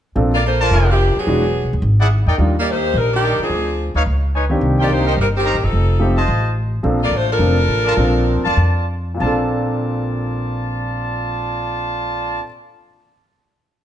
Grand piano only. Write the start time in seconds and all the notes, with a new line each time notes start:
0.16 F3 A#3 C4 D4 A4
1.27 E3 G#3 B3 D4 F#4
2.38 D#3 G3 A#3 D4 F4
4.49 D#3 A#3 C4 D4 G4
4.88 D#3 A#3 C4 D4 G4
6.00 F3 A3 C4 D#4 G4
6.83 F3 A#3 C4 D4 A4
7.39 F3 A#3 C4 D4 F4
7.97 F3 A#3 C4 D4 F4
9.14 A#2 A#3
9.20 C4 D4
9.26 A4